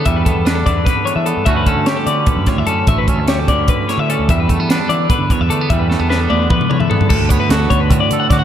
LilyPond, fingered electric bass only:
\new Staff \with { instrumentName = "Fingered electric bass" } { \clef bass \time 7/8 \key d \major \tempo 4 = 149 e,8. e,8. e,8 r8. e8 g,16 | d,8. d8 r16 d8 r16 fis,16 r16 d,16 fis,8 | a,,8. d,8. d,8 r8. d8 d,16 | e,8. e8 r16 e8 r16 d16 r16 e,16 d8 |
e,8. e,8. e,8 r8. e8 g,16 | d,16 d,8 r16 d,8 d,8 d16 r16 d8 d8 | }